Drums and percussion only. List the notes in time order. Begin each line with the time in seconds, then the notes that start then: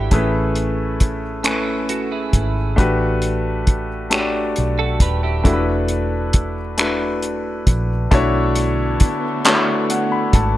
0.11 kick, closed hi-hat
0.55 closed hi-hat
1.00 kick, closed hi-hat
1.44 finger snap, closed hi-hat
1.89 closed hi-hat
2.33 kick, closed hi-hat
2.78 kick, closed hi-hat
3.22 closed hi-hat
3.67 kick, closed hi-hat
4.11 finger snap, closed hi-hat
4.56 closed hi-hat
5.00 kick, closed hi-hat
5.45 kick, closed hi-hat
5.88 closed hi-hat
6.33 kick, closed hi-hat
6.78 finger snap, closed hi-hat
7.22 closed hi-hat
7.67 kick, closed hi-hat
8.12 kick, closed hi-hat
8.55 closed hi-hat
9.00 kick, closed hi-hat
9.45 clap, closed hi-hat
9.90 closed hi-hat
10.33 kick, closed hi-hat